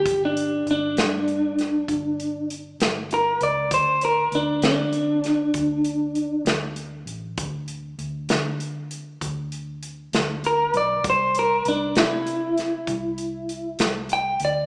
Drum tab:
HH |xxxxxxxxxxxx|xxxxxxxxxxxx|xxxxxxxxxxxx|xxxxxxxxxxxx|
SD |---o-o---o--|---o-o---o--|---o-----o--|---o-o---o--|
BD |o-----o-----|o-----o-----|o-----o-----|o-----o-----|